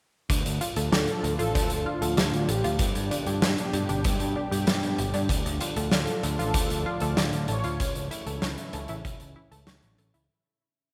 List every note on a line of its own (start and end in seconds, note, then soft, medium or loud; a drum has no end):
0.30 0.43 D2 medium
0.30 2.77 A2 medium
0.30 5.26 D3 medium
0.30 2.77 F3 medium
0.30 5.26 D4 medium
0.30 0.44 D4 medium
0.30 2.77 F4 medium
0.30 kick loud
0.30 closed hi-hat loud
0.45 0.58 D2 medium
0.45 closed hi-hat medium
0.61 0.76 F4 loud
0.61 closed hi-hat medium
0.76 0.89 D2 medium
0.76 0.92 A4 medium
0.76 closed hi-hat medium
0.92 1.05 D2 loud
0.92 1.33 A4 loud
0.92 1.06 D5 medium
0.92 snare loud
0.92 closed hi-hat loud
1.07 closed hi-hat soft
1.23 1.36 D2 medium
1.23 1.37 A4 medium
1.23 closed hi-hat medium
1.32 1.39 B4 medium
1.39 1.52 A1 medium
1.39 1.53 F4 loud
1.39 1.87 A4 loud
1.39 closed hi-hat medium
1.55 1.68 D2 medium
1.55 1.69 D4 medium
1.55 kick loud
1.55 closed hi-hat medium
1.70 1.83 D2 medium
1.70 closed hi-hat medium
1.86 2.50 F4 loud
1.86 2.01 F4 loud
2.01 2.14 D2 medium
2.01 2.17 A4 medium
2.01 closed hi-hat medium
2.17 2.30 D2 loud
2.17 2.31 D5 medium
2.17 snare loud
2.17 closed hi-hat loud
2.33 2.46 D2 medium
2.33 closed hi-hat medium
2.49 2.61 A1 medium
2.49 3.07 G4 medium
2.49 2.63 A4 medium
2.49 closed hi-hat medium
2.64 2.77 D2 medium
2.64 2.78 F4 loud
2.64 closed hi-hat medium
2.79 2.92 G2 medium
2.79 5.27 B2 medium
2.79 5.27 G3 medium
2.79 2.94 B3 medium
2.79 5.27 G4 medium
2.79 kick loud
2.79 closed hi-hat loud
2.95 3.08 G2 medium
2.95 closed hi-hat medium
3.11 3.26 D4 loud
3.11 closed hi-hat medium
3.26 3.39 G2 medium
3.26 3.42 G4 medium
3.26 closed hi-hat soft
3.42 3.55 G2 medium
3.42 3.56 B4 medium
3.42 snare loud
3.42 closed hi-hat medium
3.58 closed hi-hat soft
3.73 3.86 G2 medium
3.73 3.88 G4 medium
3.73 closed hi-hat medium
3.89 4.02 G1 medium
3.89 4.03 D4 loud
3.89 closed hi-hat medium
4.04 4.18 G2 loud
4.04 4.19 B3 medium
4.04 kick loud
4.04 closed hi-hat loud
4.20 4.33 G2 medium
4.20 closed hi-hat medium
4.36 4.51 D4 loud
4.51 4.64 G2 medium
4.51 4.66 G4 medium
4.51 closed hi-hat medium
4.67 4.80 G2 medium
4.67 4.81 B4 medium
4.67 snare loud
4.67 closed hi-hat loud
4.83 4.96 G2 medium
4.83 closed hi-hat medium
4.98 5.11 G1 medium
4.98 5.13 G4 medium
4.98 closed hi-hat medium
5.14 5.27 G2 medium
5.14 5.28 D4 loud
5.14 closed hi-hat medium
5.29 5.42 D2 loud
5.29 10.26 A2 medium
5.29 7.77 D3 medium
5.29 7.77 F3 medium
5.29 5.44 D4 medium
5.29 7.77 D4 medium
5.29 7.77 F4 medium
5.29 kick loud
5.29 closed hi-hat medium
5.45 5.58 D2 medium
5.45 closed hi-hat medium
5.61 5.76 F4 loud
5.61 closed hi-hat medium
5.76 5.89 D2 medium
5.76 5.91 A4 medium
5.76 closed hi-hat medium
5.92 6.05 D2 loud
5.92 6.36 A4 medium
5.92 6.06 D5 medium
5.92 snare loud
5.92 closed hi-hat medium
6.07 closed hi-hat medium
6.23 6.36 D2 medium
6.23 6.37 A4 medium
6.23 closed hi-hat medium
6.39 6.52 A1 medium
6.39 6.53 F4 loud
6.39 6.83 A4 medium
6.39 closed hi-hat medium
6.54 6.67 D2 loud
6.54 6.69 D4 medium
6.54 kick loud
6.54 closed hi-hat loud
6.70 6.83 D2 medium
6.70 closed hi-hat medium
6.86 7.01 F4 loud
6.86 7.50 D5 loud
7.00 7.14 D2 medium
7.00 7.16 A4 medium
7.00 closed hi-hat soft
7.17 7.30 D2 loud
7.17 7.31 D5 medium
7.17 snare loud
7.17 closed hi-hat medium
7.33 7.46 D2 medium
7.33 closed hi-hat medium
7.48 7.61 A1 medium
7.48 7.63 A4 medium
7.48 8.07 C#5 loud
7.48 closed hi-hat medium
7.64 7.77 D2 medium
7.64 7.78 F4 loud
7.64 closed hi-hat medium
7.80 7.93 C#2 loud
7.80 10.27 C#3 medium
7.80 10.27 E3 medium
7.80 7.94 C#4 medium
7.80 10.27 C#4 medium
7.80 10.27 E4 medium
7.80 kick loud
7.80 closed hi-hat loud
7.95 8.08 C#2 medium
7.95 closed hi-hat medium
8.11 8.26 E4 loud
8.11 closed hi-hat medium
8.26 8.39 C#2 medium
8.26 8.41 A4 medium
8.26 closed hi-hat medium
8.42 8.55 C#2 loud
8.42 8.56 C#5 medium
8.42 snare loud
8.42 closed hi-hat medium
8.58 closed hi-hat medium
8.73 8.86 C#2 medium
8.73 8.87 A4 medium
8.73 closed hi-hat medium
8.88 9.02 A1 medium
8.88 9.03 E4 loud
8.88 closed hi-hat medium
9.05 9.18 B1 medium
9.05 9.19 C#4 medium
9.05 kick loud
9.05 closed hi-hat medium
9.20 9.33 C#2 medium
9.20 closed hi-hat medium
9.36 9.51 E4 loud
9.51 9.64 C#2 medium
9.51 9.66 A4 medium
9.51 closed hi-hat soft
9.67 9.80 C#2 loud
9.67 9.81 C#5 medium
9.67 snare loud
9.67 closed hi-hat medium
9.82 9.96 A1 medium
9.82 closed hi-hat medium
9.98 10.11 A1 medium
9.98 10.12 A4 medium
9.98 closed hi-hat medium
10.14 10.27 C#2 medium
10.14 10.28 E4 loud
10.14 closed hi-hat medium